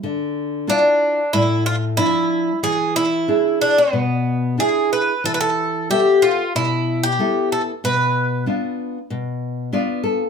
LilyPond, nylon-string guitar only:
\new Staff \with { instrumentName = "Nylon-string guitar" } { \time 4/4 \key e \phrygian \tempo 4 = 93 << { r1 | r1 | r1 | r2. d''8 a'8 | } \\ { d4 <d' e' f'>4 a,4 <f d' e'>4 | e4 <d' e' gis'>4 b,4 <d' e' gis'>4 | e4 <b a' e''>4 b,4 <b e' a'>4 | b,4 <b d' f'>4 b,4 <b d' f'>4 | } >> }